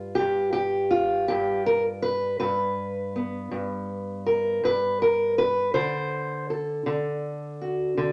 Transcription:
0.00 0.18 G2 medium
0.00 1.31 G3 soft
0.00 0.89 F4 loud
0.15 0.51 G4 medium
0.19 1.26 G2 medium
0.53 1.27 G4 medium
0.91 2.03 F4 medium
1.28 2.39 G2 medium
1.28 1.66 G4 medium
1.66 1.82 A#4 medium
2.02 2.38 B4 loud
2.40 3.50 G2 medium
2.40 3.98 B4 medium
3.16 5.70 B3 soft
3.51 4.62 G2 medium
4.26 4.64 A#4 medium
4.63 5.70 G2 medium
4.63 5.01 B4 medium
5.02 5.38 A#4 medium
5.38 5.74 B4 loud
5.74 6.86 D3 medium
5.74 6.48 C5 medium
6.50 8.12 A4 soft
6.86 7.97 D3 medium
7.61 8.12 F#4 soft
7.97 8.12 D3 medium

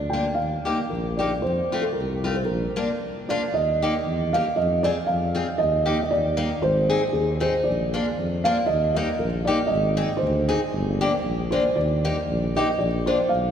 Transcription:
0.00 0.39 D2 medium
0.00 0.13 D5 medium
0.10 0.24 A#3 soft
0.10 0.37 G5 medium
0.14 0.25 D4 soft
0.14 0.25 F4 soft
0.34 0.56 D#2 medium
0.34 0.91 F5 medium
0.65 0.77 A#3 soft
0.65 0.77 D#4 soft
0.65 0.77 G4 medium
0.89 1.45 A#1 medium
0.89 1.16 A#4 soft
1.17 1.30 A#3 soft
1.17 1.30 D#4 soft
1.17 1.30 G4 medium
1.17 1.41 D5 medium
1.42 1.62 F2 medium
1.42 1.80 C5 medium
1.72 1.83 A3 soft
1.72 1.83 C4 soft
1.72 1.83 F4 medium
1.81 1.95 A4 medium
1.93 2.50 C2 medium
1.93 2.32 A#4 medium
2.24 2.35 A3 soft
2.24 2.35 C4 soft
2.24 2.35 F4 medium
2.35 2.40 C5 medium
2.45 2.67 A#1 medium
2.45 3.24 A#4 medium
2.76 2.88 A#3 medium
2.76 2.88 D4 medium
2.76 2.88 F4 medium
3.29 3.41 A#3 medium
3.29 3.41 D4 soft
3.29 3.41 F4 medium
3.29 3.52 D5 medium
3.54 3.88 D#2 medium
3.54 4.36 D#5 medium
3.82 3.93 A#3 medium
3.82 3.93 D#4 soft
3.82 3.93 G4 medium
4.06 4.39 E2 medium
4.33 4.45 A#3 medium
4.33 4.45 D#4 soft
4.33 4.45 G4 soft
4.33 4.55 F5 medium
4.56 4.91 F2 medium
4.56 4.82 D#5 medium
4.83 4.95 C4 medium
4.83 4.95 F4 medium
4.83 4.95 G#4 medium
4.83 4.89 D5 medium
5.07 5.41 F2 medium
5.07 5.60 F5 medium
5.35 5.46 C4 medium
5.35 5.46 F4 soft
5.35 5.46 G#4 medium
5.58 5.93 D#2 medium
5.58 6.01 D#5 loud
5.86 5.97 A#3 soft
5.86 5.97 D#4 medium
5.86 5.97 G4 medium
6.02 6.10 D#5 medium
6.11 6.44 D#2 medium
6.11 6.59 D5 medium
6.37 6.48 A#3 medium
6.37 6.49 D#4 medium
6.37 6.49 G4 soft
6.62 6.96 G#1 medium
6.62 7.11 C5 medium
6.90 7.01 C4 medium
6.90 7.01 D#4 soft
6.90 7.01 G#4 medium
7.13 7.48 D#2 medium
7.13 7.40 G#4 medium
7.40 7.52 C4 soft
7.40 7.53 D#4 medium
7.40 7.52 G#4 soft
7.40 7.67 C5 medium
7.64 8.00 A#1 medium
7.64 8.47 D5 medium
7.94 8.05 A#3 medium
7.94 8.05 D4 soft
7.94 8.05 F4 medium
8.18 8.52 F2 medium
8.44 8.56 A#3 medium
8.44 8.56 D4 medium
8.44 8.57 F4 medium
8.44 8.67 F5 medium
8.66 9.02 D#2 medium
8.66 8.93 D#5 medium
8.94 9.07 A#3 medium
8.94 9.07 D#4 medium
8.94 9.07 G4 medium
8.94 9.17 D#5 medium
9.19 9.53 A#1 medium
9.19 9.25 A#4 medium
9.45 9.58 A#3 medium
9.45 9.58 D#4 medium
9.45 9.58 G4 medium
9.45 9.70 D5 medium
9.67 10.03 G#1 loud
9.67 10.21 D#5 medium
9.97 10.08 C4 medium
9.97 10.08 D#4 medium
9.97 10.08 G#4 medium
10.17 11.19 C5 medium
10.22 10.55 D2 medium
10.49 10.59 C4 soft
10.49 10.60 D#4 medium
10.49 10.60 G#4 medium
10.73 11.07 G1 medium
11.01 11.12 A#3 medium
11.01 11.12 D4 medium
11.01 11.12 G4 medium
11.24 11.58 A#1 medium
11.51 11.63 A#3 medium
11.51 11.63 D4 soft
11.51 11.63 F4 medium
11.51 11.76 C5 medium
11.76 12.10 D#2 medium
11.76 12.52 D5 medium
12.05 12.15 A#3 medium
12.05 12.15 D#4 medium
12.05 12.15 G4 medium
12.27 12.61 A#1 medium
12.56 12.67 A#3 medium
12.56 12.67 D#4 medium
12.56 12.67 G4 medium
12.56 12.78 D#5 medium
12.78 13.12 A#1 medium
12.78 12.85 D5 medium
13.06 13.18 A#3 soft
13.06 13.18 D4 medium
13.06 13.18 F4 medium
13.06 13.31 C5 medium
13.29 13.51 B1 medium
13.29 13.51 F5 medium

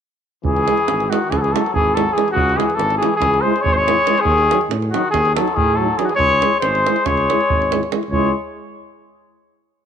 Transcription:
0.44 0.68 C#2 medium
0.44 1.12 E3 medium
0.44 1.12 G#4 medium
0.44 davul low medium
0.57 davul high soft
0.68 0.76 G#3 medium
0.68 0.77 E4 soft
0.68 davul high medium
0.78 davul high soft
0.87 1.11 G#1 medium
0.87 davul high medium
1.00 davul high soft
1.10 1.32 D#3 medium
1.10 1.18 G#3 medium
1.10 1.20 E4 medium
1.10 1.32 F#4 medium
1.10 davul high medium
1.30 1.54 C#2 medium
1.30 1.40 E3 medium
1.30 1.39 G#4 medium
1.30 davul high medium
1.30 davul low soft
1.37 1.45 F#3 medium
1.37 1.43 A4 medium
1.41 1.59 E3 medium
1.41 1.54 G#4 medium
1.41 davul high soft
1.52 1.62 G#3 medium
1.52 1.63 E4 medium
1.52 1.72 A4 medium
1.52 davul high medium
1.57 1.75 F#3 medium
1.66 davul high soft
1.73 2.07 G#1 medium
1.73 1.98 E3 medium
1.73 1.96 G#4 medium
1.73 davul low medium
1.94 2.15 F#3 medium
1.94 2.04 G#3 medium
1.94 2.03 E4 medium
1.94 2.14 A4 medium
1.94 davul high medium
2.13 2.32 E3 medium
2.13 2.24 G#3 medium
2.13 2.21 E4 soft
2.13 2.31 G#4 medium
2.18 davul high medium
2.28 2.58 F#4 loud
2.28 davul high soft
2.33 2.58 C#2 medium
2.33 2.55 C#3 medium
2.33 davul low medium
2.49 davul high soft
2.54 2.74 E3 medium
2.54 2.66 G#3 medium
2.54 2.76 G#4 medium
2.58 2.66 E4 soft
2.58 davul high medium
2.70 davul high soft
2.74 3.01 G#1 medium
2.74 2.98 E3 medium
2.74 2.97 A4 medium
2.79 davul high medium
2.90 davul high soft
2.98 3.18 E3 medium
2.98 3.15 G#4 medium
3.02 3.11 G#3 medium
3.02 3.10 E4 medium
3.02 davul high medium
3.16 3.43 E3 medium
3.16 3.43 G#4 medium
3.20 3.45 C#2 medium
3.20 davul high medium
3.20 davul low medium
3.34 davul high soft
3.41 3.63 G#3 medium
3.41 3.53 E4 medium
3.41 3.63 C5 medium
3.46 3.54 G#3 medium
3.56 davul high soft
3.62 3.97 G#1 medium
3.62 3.72 G#3 medium
3.62 3.75 C#5 loud
3.66 davul low medium
3.72 3.75 G#3 medium
3.72 4.24 G#3 medium
3.72 3.78 C5 medium
3.77 4.22 C#5 loud
3.88 3.95 G#3 medium
3.88 3.96 E4 medium
3.88 davul high medium
4.07 4.16 G#3 medium
4.07 4.15 E4 medium
4.07 davul high medium
4.18 4.62 G#4 loud
4.18 davul high soft
4.22 4.49 D#2 loud
4.22 4.62 D#3 loud
4.22 davul low medium
4.38 davul high soft
4.51 4.59 F#3 medium
4.51 4.59 D#4 medium
4.51 davul high medium
4.61 davul high soft
4.69 4.93 A2 medium
4.69 davul high medium
4.82 davul high soft
4.91 5.11 D#3 medium
4.91 5.10 F#4 medium
4.91 davul high medium
4.95 5.02 F#3 medium
4.95 5.03 D#4 medium
5.10 5.37 D#2 medium
5.10 5.34 D#3 medium
5.10 5.34 G#4 medium
5.10 davul high medium
5.10 davul low medium
5.25 davul high soft
5.35 5.56 F#3 medium
5.35 5.47 F#3 medium
5.35 5.58 A4 medium
5.35 davul high medium
5.40 5.47 D#4 medium
5.48 davul high soft
5.54 5.91 A2 medium
5.54 5.79 D#3 medium
5.54 5.78 G#4 medium
5.54 davul low medium
5.76 5.99 F#3 medium
5.76 5.87 F#3 medium
5.76 5.99 A4 medium
5.82 5.90 D#4 medium
5.97 6.05 E3 soft
5.97 6.07 F#3 medium
5.97 6.09 D#4 medium
5.97 6.06 G#4 medium
5.97 davul high medium
6.05 6.15 E3 medium
6.05 6.09 F#4 medium
6.05 6.15 G#4 medium
6.09 davul high soft
6.15 6.42 C#2 medium
6.15 6.58 G#3 medium
6.15 6.58 C#5 loud
6.15 davul low medium
6.30 davul high soft
6.42 6.50 G#3 medium
6.42 6.52 E4 soft
6.42 davul high medium
6.53 davul high soft
6.60 6.86 G#1 medium
6.60 7.05 G#3 medium
6.60 7.07 C5 medium
6.60 davul high medium
6.75 davul high soft
6.86 6.95 G#3 medium
6.86 6.97 E4 medium
6.86 davul high medium
6.96 davul high soft
7.05 7.31 C#2 medium
7.05 7.91 G#3 medium
7.05 7.91 C#5 medium
7.05 davul high medium
7.05 davul low medium
7.17 davul high soft
7.30 7.39 G#3 medium
7.30 7.39 E4 medium
7.30 davul high medium
7.41 davul high soft
7.50 7.83 G#1 medium
7.50 davul low medium
7.62 davul high soft
7.72 7.80 G#3 soft
7.72 7.81 E4 soft
7.72 davul high medium
7.83 davul high soft
7.91 7.99 G#3 soft
7.91 8.01 E4 soft
7.91 davul high medium
8.03 davul high soft
8.09 8.32 C#2 medium
8.09 8.33 G#3 medium
8.09 8.34 E4 medium
8.09 8.32 C#5 medium
8.09 davul low medium

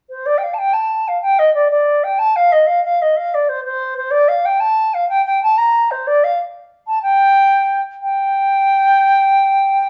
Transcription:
0.10 0.28 C5 medium
0.26 0.39 D5 medium
0.38 0.45 G5 soft
0.43 0.55 F5 medium
0.54 0.60 A5 medium
0.58 0.75 G5 medium
0.73 1.10 A5 medium
1.08 1.21 F5 medium
1.22 1.40 G5 loud
1.39 1.54 D#5 medium
1.54 1.68 D5 medium
1.71 2.05 D5 medium
2.04 2.20 G5 medium
2.19 2.38 A5 loud
2.36 2.54 F5 medium
2.52 2.68 D#5 medium
2.67 2.83 F5 medium
2.84 3.03 F5 medium
3.02 3.18 D#5 medium
3.17 3.36 F5 medium
3.34 3.50 D5 medium
3.49 3.64 C5 medium
3.65 3.94 C5 medium
3.97 4.12 C5 medium
4.11 4.30 D5 loud
4.28 4.47 F5 medium
4.45 4.62 G5 medium
4.60 4.96 A5 medium
4.94 5.08 F5 medium
5.09 5.25 G5 loud
5.26 5.41 G5 medium
5.43 5.59 A5 loud
5.58 5.93 A#5 medium
5.91 6.09 C5 medium
6.07 6.25 D5 loud
6.24 6.39 F5 medium
6.88 7.02 A5 medium
7.02 7.81 G5 loud
8.02 9.89 G5 loud

